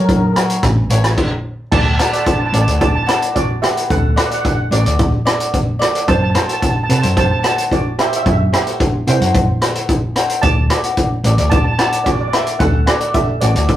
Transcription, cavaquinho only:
Already playing: F#4 A#4 C#5
0.36 F#4 A#4 C#5
0.90 E4 A4 C#5
1.99 F#4 A4 D5
2.13 F#4 A4 D5
2.54 F#4 A4 D5
2.67 F#4 A4 D5
3.06 F#4 A4 D5
3.62 F#4 A4 B4
4.16 F#4 A4 D5
4.30 F#4 A4 D5
4.71 F#4 A4 D5
4.85 F#4 A4 D5
5.25 F#4 A4 D5
5.79 F#4 A4 D5
6.34 F#4 A4 C5
6.48 F#4 A4 C5
6.89 F#4 A4 B4
7.02 F#4 A4 C5
7.43 F#4 A4 C5
7.99 F#4 A4 C5
8.52 F#4 A4 C5
8.67 F#4 A4 C5
9.07 F#4 A4 C5
9.21 F#4 A4 C5
9.62 F#4 A4 C5
10.16 F#4 A4 C5
10.71 F#4 A4 D5
10.84 F#4 A4 D5
11.25 F#4 A4 D5
11.39 F#4 A4 D5
11.79 F#4 A4 D5
12.33 F#4 A4 E5
12.87 F#4 A4 D5
13.01 F#4 A4 D5
13.42 F#4 A4 D5
13.56 F#4 A4 D5

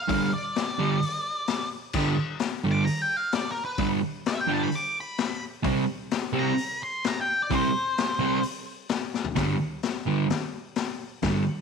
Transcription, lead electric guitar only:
Already playing: F5
0.34 D5
2.72 D6
2.85 A#5
3.02 G5
3.17 F5
3.35 D5
3.51 A#4
3.65 B4
4.28 E5
4.41 G5
4.54 A5
4.63 B5
4.75 D6
5.01 B5
6.39 A#5
6.83 C6
7.08 A#5
7.21 G5
7.42 D5
7.55 C5

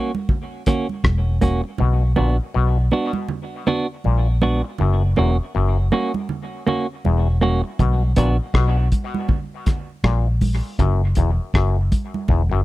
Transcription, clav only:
1.80 B2
2.17 A#2
2.54 B2
4.05 A#2
4.80 F#2
5.18 E2
5.55 F#2
7.05 E2
7.79 B2
8.17 A#2
8.54 B2
10.04 A#2
10.79 F#2
11.18 E2
11.54 F#2
12.29 E2
12.52 F#2

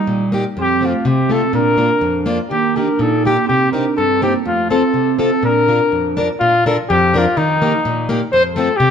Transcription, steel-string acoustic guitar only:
0.07 A#2
0.32 A#3 D#4 G4
0.57 F2
0.81 A3 C4 F4
1.05 C3
1.30 A3 C4 F4
1.53 A#2
1.78 A#3 D4 F4
2.01 F2
2.26 A#3 D4 F4
2.51 D#3
2.76 A#3 D#4 G4
2.99 A#2
3.25 A#3 D#4 G4
3.49 C3
3.73 C4 D#4 G4
3.98 G2
4.22 C4 D#4 G4
4.46 F2
4.71 C4 F4 A4
4.94 C3
5.19 C4 F4 A4
5.43 A#2
5.68 D4 F4 A#4
5.92 F2
6.17 D4 F4 A#4
6.41 A#2
6.66 D4 F4 A#4
6.90 F2
7.14 D4 F4 A#4
7.37 D#3
7.62 A#3 D#4 G4
7.85 A#2
8.09 A#3 D#4 G4
8.33 F2
8.56 A3 C4 F4
8.80 C3

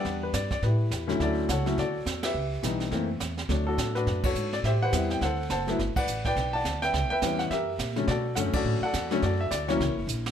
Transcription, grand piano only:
Already playing: G3 B3 D4 G4 B4 D5 F#5
0.23 B4
0.34 D5
0.52 D5
0.64 E4 G4 B4
1.07 D2 F#3 A3 C#4 E4
1.22 F#4 A4 D5
1.50 A4 C#5 F#5
1.65 F#3 A3 C#4 E4
1.79 F#4 A4 D5
2.25 G4 B4 E5
2.63 E3 G3 B3 D#4
2.91 E3 A3 A#3 C4
3.49 F#3 A3 D4 C#5
3.67 D4 F#4 A4
3.95 D4 F#4 B4
4.25 F#4 A4 C#5
4.54 D5
4.65 G4 C5 E5
4.82 B4 C5 F#5
4.92 G3 B3 C4 E4
5.11 G5
5.23 A4 C5 F#5
5.51 C5 F#5 A5
5.67 F#3 A3 B3 E4
5.96 B4 D5 F#5
6.25 B4 D5 G5
6.53 D5 F#5 A5
6.82 B4 E5 G5
7.10 B4 E5 G5
7.22 E3 G3 B3 C#4
7.39 F#5
7.51 G4 A#4 E5
7.96 D3 F#3 A3 C#4
8.08 F#4 A4 D5
8.36 D3 F#3 A3 C#4 F#5
8.54 F#4 A4 D5
8.83 A4 D5 F#5
9.11 D3 F#3 A3 C#4
9.23 F#4 A4 D5
9.41 E5
9.51 D5
9.68 E3 F#3 A#3 C#4 E4 A#4 C#5

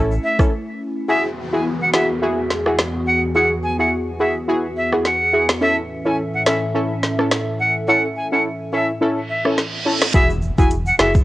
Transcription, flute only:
0.24 E5
1.09 E5
1.53 G#5
1.81 F#5
1.94 E5
3.07 F#5
3.35 F#5
3.63 G#5
3.79 F#5
4.20 E5
4.77 E5
5.05 F#5
5.62 E5
6.06 G#5
6.34 F#5
6.46 E5
7.60 F#5
7.88 F#5
8.16 G#5
8.32 F#5
8.73 E5
9.29 E5
10.14 E5
10.58 G#5
10.87 F#5
10.99 E5

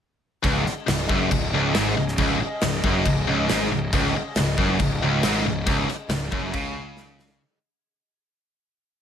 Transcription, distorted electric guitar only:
0.43 C#2
0.65 muted distorted electric guitar stroke
0.87 C#2
1.09 F#2
1.31 C#2
1.54 C#2
1.75 G#2
1.97 C#2
2.19 C#2
2.40 muted distorted electric guitar stroke
2.63 C#2
2.84 F#2
3.06 C#2
3.27 C#2
3.48 G#2
3.72 C#2
3.93 C#2
4.16 muted distorted electric guitar stroke
4.37 C#2
4.58 F#2
4.79 C#2
5.03 C#2
5.24 G#2
5.46 C#2
5.66 C#2
5.89 muted distorted electric guitar stroke
6.10 C#2
6.32 F#2
6.54 C#3

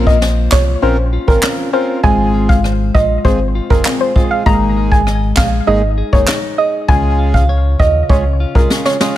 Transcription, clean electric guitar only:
Already playing: A#3 C#4 F4
0.22 C5
0.52 F4
0.83 C#4
1.13 F4
1.43 C#4
1.73 F4
2.04 G#3
2.34 F4
2.64 C5
2.95 F4
3.25 C4
3.55 F4
3.85 C4
4.16 F4
4.46 G#3
4.77 G#4
5.07 D#5
5.37 G#4
5.67 D#4
5.98 G#4
6.28 D#4
6.58 G#4
6.89 C#3
7.19 F4
7.49 C#5
7.79 F4
8.10 C#4
8.40 F4
8.70 C#4
9.01 F4

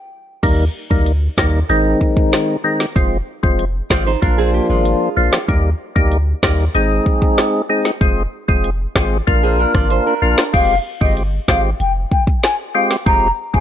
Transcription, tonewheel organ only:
0.43 D#3 G3 A#3 D#4
0.90 D#3 G3 A#3 D#4
1.38 D#3 G3 A#3 D#4
1.69 D#3 G#3 C4 D#4
2.64 D#3 G#3 C4 D#4
2.96 F3 G#3 C4 F4
3.43 F3 G#3 C4 F4
3.90 F3 G#3 C4 F4
4.22 F3 A#3 D4 F4
5.17 F3 A#3 D4 F4
5.48 G3 A#3 D#4 G4
5.96 G3 A#3 D#4 G4
6.43 G3 A#3 D#4 G4
6.75 G#3 C4 D#4 G#4
7.69 G#3 C4 D#4 G#4
8.01 G#3 C4 F4 G#4
8.48 G#3 C4 F4 G#4
8.95 G#3 C4 F4 G#4
9.27 A#3 D4 F4 A#4
10.22 A#3 D4 F4 A#4
10.53 G#3 C4 F4 G4
11.01 G#3 C4 F4 G4
11.48 G#3 C4 F4 G4
12.75 G#3 C4 F4 G4
13.06 G#3 C4 F4 G4
13.53 G#3 C4 F4 G4

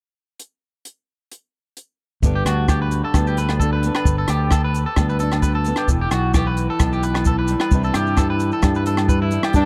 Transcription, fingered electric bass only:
2.22 G1
2.45 D2
3.14 D2
4.05 G1
4.28 D2
4.97 D2
5.88 E1
6.11 B1
6.80 B1
7.71 C2
7.95 G2
8.62 G2
9.54 G2

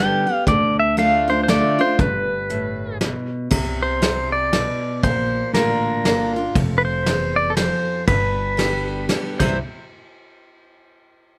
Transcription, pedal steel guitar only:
Already playing: G5
0.48 D5
0.79 E5
0.99 F5
1.30 C5
1.43 C5
1.50 D5
1.81 C5
2.01 B4
3.83 C5
4.32 D5
5.04 C5
5.54 A#4
6.78 B4
6.85 C5
7.36 D5
7.50 A4
7.57 C5
8.08 B4
9.40 C5

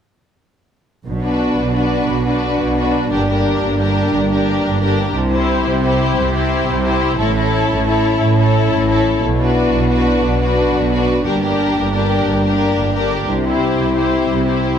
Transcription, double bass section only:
1.06 B1
1.57 B1
2.08 B1
2.60 B1
3.11 G1
3.62 G1
4.13 G1
4.65 G1
5.15 C2
5.66 C2
6.17 C2
6.69 C2
7.19 A1
7.70 A1
8.22 A1
8.72 A1
9.23 B1
9.73 B1
10.24 B1
10.75 B1
11.25 G1
11.76 G1
12.27 G1
12.77 G1
13.29 C2
13.79 C2
14.30 C2

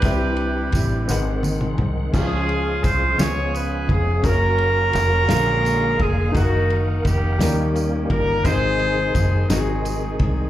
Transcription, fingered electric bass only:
0.03 C2
0.73 A1
1.09 G#1
1.79 C2
2.14 C#2
2.84 C2
3.19 C#2
3.89 F1
4.24 F#1
4.95 F1
5.30 A#1
6.00 F1
6.35 F#1
7.05 F1
7.39 D#2
8.10 G1
8.45 G#1
9.15 F#1
9.49 G#1
10.20 C2

